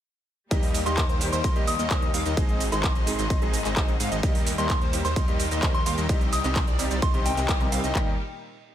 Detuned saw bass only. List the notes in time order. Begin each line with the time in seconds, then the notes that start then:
0.51 D#2
0.86 D#2
1.09 D#2
1.33 D#2
1.44 D#2
1.56 D#2
1.79 D#2
1.91 D#2
2.14 D#2
2.26 D#2
2.37 G#1
2.72 G#1
2.95 G#1
3.19 G#1
3.30 G#1
3.42 G#1
3.65 G#1
3.77 G#1
4.00 G#2
4.12 G#1
4.23 D#2
4.58 D#2
4.81 D#2
5.05 D#2
5.16 D#2
5.28 D#2
5.51 D#2
5.63 D#2
5.86 D#2
5.98 D#2
6.09 C2
6.44 C2
6.68 C2
6.91 C2
7.02 C2
7.14 C2
7.37 C2
7.49 C2
7.72 C2
7.84 C2
7.95 D#2